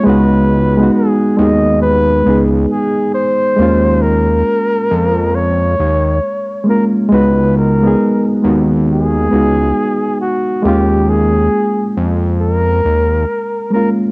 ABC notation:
X:1
M:4/4
L:1/16
Q:"Swing 16ths" 1/4=68
K:D#phr
V:1 name="Flugelhorn"
B4 G2 d2 B2 z2 G2 ^B2- | ^B2 A6 c6 A2 | B2 A4 z2 G6 F2 | =G2 ^G4 z2 A6 A2 |]
V:2 name="Reed electric piano"
[G,B,DF]2 z [G,B,DF]2 z [G,B,DG]2 z2 [G,B,DG]4 z2 | [G,A,C^E]4- [G,A,CE] z8 z [G,A,CE] z | [G,B,DF]2 z [G,B,DG]2 z [G,B,DF]2 z2 [G,B,DF]4 z2 | [G,A,C^E]4- [G,A,CE] z8 z [G,A,CE] z |]
V:3 name="Analog synth bass" clef=bass
C,,4 z2 D,,4 C,,2 z4 | D,,4 z2 ^E,,4 D,,2 z4 | C,,4 z2 D,,4 C,,2 z4 | D,,4 z2 ^E,,4 D,,2 z4 |]